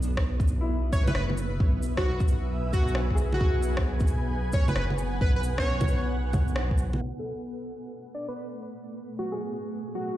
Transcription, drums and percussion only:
0.03 shaker medium
0.17 kick medium
0.17 cross-stick loud
0.40 kick loud
0.40 shaker soft
0.48 shaker medium
0.93 kick loud
0.93 shaker soft
1.07 low bongo medium
1.07 shaker soft
1.15 cross-stick loud
1.30 low bongo soft
1.38 shaker medium
1.60 kick loud
1.83 shaker medium
1.97 kick medium
1.97 cross-stick loud
2.20 kick loud
2.20 shaker soft
2.28 shaker medium
2.73 kick loud
2.73 shaker soft
2.88 shaker soft
2.95 cross-stick loud
3.11 kick medium
3.17 shaker soft
3.33 low bongo soft
3.41 kick loud
3.63 shaker soft
3.77 kick medium
3.77 cross-stick loud
4.00 kick loud
4.00 shaker soft
4.07 shaker medium
4.52 kick loud
4.52 shaker medium
4.68 low bongo medium
4.68 shaker soft
4.76 cross-stick loud
4.90 low bongo soft
4.98 shaker medium
5.21 kick loud
5.44 shaker medium
5.58 kick medium
5.58 cross-stick loud
5.81 kick loud
5.81 low bongo medium
5.81 shaker soft
5.88 shaker medium
6.33 kick loud
6.33 low bongo medium
6.33 shaker medium
6.48 shaker soft
6.56 cross-stick loud
6.71 kick medium
6.78 shaker medium
6.93 low bongo soft

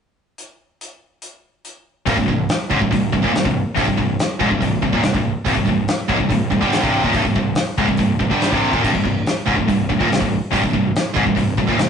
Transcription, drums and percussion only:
0.38 closed hi-hat medium
0.81 closed hi-hat medium
1.22 closed hi-hat medium
1.65 closed hi-hat medium
2.07 kick loud
2.07 open hi-hat medium
2.18 kick medium
2.28 kick medium
2.49 snare loud
2.49 open hi-hat medium
2.71 kick loud
2.82 kick medium
2.93 kick medium
2.93 open hi-hat medium
3.14 kick loud
3.24 kick medium
3.35 snare loud
3.35 open hi-hat medium
3.46 kick medium
3.77 kick loud
3.77 open hi-hat medium
3.88 kick medium
3.99 kick medium
4.19 snare loud
4.19 open hi-hat medium
4.41 kick loud
4.51 kick medium
4.62 kick medium
4.62 open hi-hat medium
4.83 kick medium
4.93 kick medium
5.03 snare loud
5.03 open hi-hat medium
5.15 kick medium
5.46 kick loud
5.46 open hi-hat medium
5.57 kick medium
5.67 kick medium
5.88 snare loud
5.88 open hi-hat medium
6.09 kick loud
6.20 kick medium
6.30 kick medium
6.30 open hi-hat medium
6.52 kick medium
6.63 kick medium
6.72 snare loud
6.72 open hi-hat medium
6.83 kick loud
7.04 kick loud
7.13 kick loud
7.13 open hi-hat medium
7.25 kick medium
7.36 kick medium
7.55 snare loud
7.55 open hi-hat medium
7.78 kick loud
7.89 kick medium
7.97 kick medium
7.97 open hi-hat medium
8.21 kick medium
8.31 kick medium
8.41 snare loud
8.41 open hi-hat medium
8.52 kick loud
8.73 kick loud
8.84 kick medium
8.84 crash medium
8.95 kick medium
9.05 kick medium
9.27 snare loud
9.27 open hi-hat medium
9.48 kick loud
9.58 kick medium
9.69 kick medium
9.69 open hi-hat medium
9.90 kick loud
10.01 kick medium
10.12 snare loud
10.12 open hi-hat medium
10.22 kick medium
10.53 kick loud
10.53 open hi-hat medium
10.64 kick medium
10.74 kick medium
10.96 snare loud
10.96 open hi-hat medium
11.17 kick loud
11.27 kick medium
11.37 kick medium
11.37 open hi-hat medium
11.58 kick medium
11.69 kick medium
11.79 snare loud
11.79 open hi-hat medium

